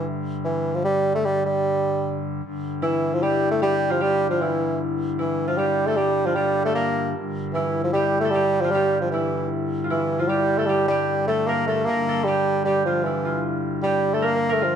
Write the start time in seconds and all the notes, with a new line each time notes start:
Already playing: G2 D3
0.45 E3
0.75 F3
0.85 G3
1.15 A3
1.25 G3
1.46 G3
2.43 G2 D3
2.82 E3 E4
3.14 F3
3.23 G3 G4
3.51 A3
3.62 G3 G4
3.90 F3 F4
4.01 G3 G4
4.30 F3 F4
4.41 E3 E4
5.19 E3 E4
5.47 F3 F4
5.58 G3 G4
5.87 A3 A4
5.97 G3 G4
6.26 F3 F4
6.36 G3 G4
6.65 A3 A4
6.75 A#3 A#4
7.15 G2 D3
7.54 E3 E4
7.84 F3
7.93 G3 G4
8.20 A3
8.25 A4
8.31 G3
8.35 G4
8.61 F3 F4
8.71 G3 G4
9.01 F3
9.11 E3 E4
9.84 F4
9.90 E3 E4
10.19 F3 F4
10.29 G3 G4
10.58 A3 A4
10.67 G3 G4
10.88 G3 G4
11.27 A3 A4
11.47 A#3 A#4
11.67 A3 A4
11.85 G2 D3 A#3 A#4
12.09 A4
12.24 G3 G4
12.64 G3 G4
12.85 F3 F4
13.03 E3 E4
13.25 F4
13.83 G3 G4
14.14 A3 A4
14.22 A#3 A#4
14.35 A#4
14.49 A3 A#4
14.61 F3 F4